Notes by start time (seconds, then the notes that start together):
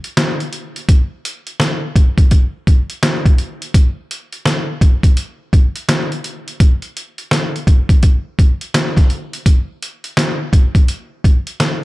0.04 closed hi-hat
0.17 snare, closed hi-hat
0.40 closed hi-hat
0.53 closed hi-hat
0.76 closed hi-hat
0.89 kick, closed hi-hat
1.25 closed hi-hat
1.47 closed hi-hat
1.60 snare, closed hi-hat
1.96 kick, closed hi-hat
2.18 kick, closed hi-hat
2.31 kick, closed hi-hat
2.67 kick, closed hi-hat
2.90 closed hi-hat
3.03 snare, closed hi-hat
3.26 kick, closed hi-hat
3.38 closed hi-hat
3.62 closed hi-hat
3.74 kick, closed hi-hat
4.11 closed hi-hat
4.33 closed hi-hat
4.46 snare, closed hi-hat
4.81 kick, closed hi-hat
5.03 kick, closed hi-hat
5.17 closed hi-hat
5.53 kick, closed hi-hat
5.76 closed hi-hat
5.89 snare, closed hi-hat
6.12 closed hi-hat
6.24 closed hi-hat
6.48 closed hi-hat
6.60 kick, closed hi-hat
6.82 closed hi-hat
6.97 closed hi-hat
7.18 closed hi-hat
7.31 snare, closed hi-hat
7.56 closed hi-hat
7.67 kick, closed hi-hat
7.89 kick, closed hi-hat
8.03 kick, closed hi-hat
8.39 kick, closed hi-hat
8.61 closed hi-hat
8.74 snare, closed hi-hat
8.96 kick, snare, closed hi-hat
9.10 closed hi-hat
9.33 closed hi-hat
9.46 kick, closed hi-hat
9.82 closed hi-hat
10.04 closed hi-hat
10.17 snare, closed hi-hat
10.53 kick, closed hi-hat
10.75 kick, closed hi-hat
10.88 closed hi-hat
11.24 kick, closed hi-hat
11.47 closed hi-hat
11.60 snare, closed hi-hat